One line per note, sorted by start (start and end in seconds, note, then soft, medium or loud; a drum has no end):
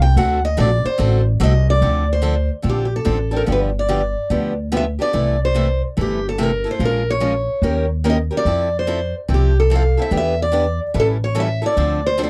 0.00 0.15 C2 loud
0.00 0.16 G5 loud
0.16 0.56 D2 loud
0.16 0.38 D3 medium
0.16 0.38 A3 medium
0.16 0.39 C4 medium
0.16 0.39 F#4 medium
0.16 0.39 A4 medium
0.16 0.43 F#5 medium
0.45 0.58 D#5 loud
0.57 0.82 A#1 loud
0.57 0.69 D3 medium
0.57 0.69 A3 medium
0.57 0.69 C4 loud
0.57 0.69 F#4 medium
0.57 0.69 A4 loud
0.57 0.85 D5 medium
0.84 1.23 C5 medium
0.84 muted upright bass stroke soft
0.98 1.39 A1 medium
0.98 1.20 D3 medium
0.98 1.20 A3 medium
0.98 1.21 C4 medium
0.98 1.21 F#4 medium
0.98 1.21 A4 medium
1.40 1.81 C2 loud
1.40 1.52 D3 loud
1.40 1.52 A3 medium
1.40 1.52 C4 medium
1.40 1.52 F#4 loud
1.40 1.52 A4 loud
1.40 1.67 D#5 loud
1.70 2.07 D5 medium
1.81 2.48 D2 medium
1.81 2.04 D3 medium
1.81 2.04 F3 medium
1.81 2.04 C4 medium
1.81 2.04 D4 medium
1.81 2.04 A4 medium
2.13 2.49 C5 medium
2.22 2.34 D3 medium
2.22 2.34 F3 medium
2.22 2.34 C4 medium
2.22 2.35 D4 medium
2.22 2.35 A4 medium
2.62 3.00 A#1 medium
2.62 2.85 D3 medium
2.62 2.86 F3 medium
2.62 2.86 C4 medium
2.62 2.86 D4 medium
2.62 2.86 A4 medium
2.70 2.84 G4 medium
2.85 2.93 G4 medium
2.96 3.36 A4 medium
3.05 3.42 A1 medium
3.05 3.17 D3 medium
3.05 3.17 F3 medium
3.05 3.17 C4 medium
3.05 3.17 D4 medium
3.05 3.17 A4 medium
3.31 3.47 C4 soft
3.31 3.47 D4 medium
3.31 3.46 A4 medium
3.37 3.42 A#4 medium
3.46 4.14 G1 medium
3.46 3.69 D3 medium
3.46 3.69 F3 medium
3.46 3.69 B3 medium
3.46 3.69 D4 medium
3.46 3.70 G4 medium
3.52 3.59 B4 medium
3.79 4.56 D5 medium
3.89 4.00 D3 medium
3.89 4.01 F3 medium
3.89 4.01 B3 medium
3.89 4.01 D4 medium
3.89 4.01 G4 medium
4.30 4.97 D2 medium
4.30 4.52 D3 medium
4.30 4.52 F3 medium
4.30 4.53 B3 medium
4.30 4.53 D4 medium
4.30 4.53 G4 medium
4.72 4.83 D3 medium
4.72 4.84 F3 medium
4.72 4.84 B3 loud
4.72 4.84 D4 medium
4.72 4.84 G4 medium
4.77 4.83 E5 medium
4.99 5.13 B3 medium
4.99 5.13 D4 medium
4.99 5.13 G4 medium
4.99 5.39 D5 medium
5.13 5.80 C2 medium
5.13 5.35 C3 medium
5.13 5.36 E3 medium
5.13 5.35 A3 medium
5.13 5.36 E4 medium
5.13 5.36 A4 medium
5.45 5.81 C5 medium
5.55 5.66 C3 medium
5.55 5.67 E3 medium
5.55 5.67 A3 medium
5.55 5.67 E4 medium
5.55 5.67 A4 medium
5.97 6.64 G1 medium
5.97 6.19 C3 medium
5.97 6.19 E3 medium
5.97 6.19 A3 medium
5.97 6.19 E4 medium
5.97 6.19 A4 medium
6.01 6.26 G4 medium
6.29 6.41 A4 medium
6.38 6.50 C3 medium
6.38 6.50 E3 medium
6.38 6.50 A3 medium
6.38 6.50 E4 medium
6.38 6.50 A4 medium
6.43 6.68 A#4 medium
6.64 6.80 A3 soft
6.64 6.80 E4 soft
6.64 6.79 A4 medium
6.71 6.83 C5 medium
6.79 7.46 A#1 medium
6.79 7.02 F3 medium
6.79 7.02 G#3 medium
6.79 7.02 C#4 medium
6.79 7.02 F4 medium
6.79 7.02 A#4 medium
6.85 7.10 A#4 medium
7.10 7.87 C#5 medium
7.20 7.32 F3 medium
7.20 7.33 G#3 medium
7.20 7.33 C#4 medium
7.20 7.33 F4 medium
7.20 7.33 A#4 medium
7.62 8.29 D#2 medium
7.62 7.85 D#3 medium
7.62 7.85 A#3 medium
7.62 7.85 C#4 medium
7.62 7.85 G4 medium
7.62 7.85 A#4 medium
8.04 8.16 D#3 medium
8.04 8.16 A#3 medium
8.04 8.16 C#4 medium
8.04 8.16 G4 medium
8.04 8.16 A#4 medium
8.10 8.16 D#5 medium
8.31 8.46 C#4 soft
8.31 8.45 G4 soft
8.31 8.45 A#4 medium
8.37 8.77 D5 medium
8.45 9.12 F2 medium
8.45 8.68 F3 medium
8.45 8.68 C4 medium
8.45 8.68 E4 medium
8.45 8.68 A4 medium
8.79 9.14 C5 medium
8.87 8.99 F3 medium
8.87 8.99 C4 medium
8.87 8.99 E4 medium
8.87 8.99 A4 medium
9.28 9.95 C2 medium
9.28 9.50 F3 medium
9.28 9.51 C4 medium
9.28 9.51 E4 medium
9.28 9.51 A4 medium
9.34 9.59 G4 medium
9.60 9.73 A4 medium
9.70 9.82 F3 medium
9.70 9.82 C4 medium
9.70 9.82 E4 medium
9.70 9.82 A4 medium
9.75 10.00 F5 loud
9.97 10.11 C4 soft
9.97 10.11 E4 soft
9.97 10.11 A4 medium
10.02 10.15 E5 medium
10.11 10.78 E2 medium
10.11 10.33 E3 medium
10.11 10.33 B3 medium
10.11 10.34 D4 medium
10.11 10.34 G4 medium
10.17 10.42 E5 loud
10.42 10.79 D5 medium
10.52 10.64 E3 medium
10.52 10.64 B3 medium
10.52 10.65 D4 medium
10.52 10.65 G4 medium
10.94 11.61 A1 loud
10.94 11.16 E3 medium
10.94 11.16 G3 medium
10.94 11.16 C#4 medium
10.94 11.17 E4 medium
10.94 11.17 A4 medium
11.00 11.06 A4 loud
11.24 11.38 C#5 medium
11.35 11.47 E3 medium
11.35 11.47 G3 medium
11.35 11.48 C#4 medium
11.35 11.48 E4 medium
11.35 11.47 A4 medium
11.40 11.65 E5 loud
11.62 11.77 C#4 soft
11.62 11.77 E4 medium
11.62 11.76 A4 medium
11.66 12.03 D5 medium
11.77 12.30 D2 medium
11.77 11.99 D3 medium
11.77 11.99 F3 medium
11.77 11.99 C4 medium
11.77 11.99 D4 medium
11.77 12.00 A4 medium
12.06 12.21 C5 medium
12.17 12.30 D3 medium
12.17 12.30 F3 medium
12.17 12.30 C4 medium
12.17 12.30 D4 loud
12.17 12.30 A4 medium
12.23 12.30 C5 medium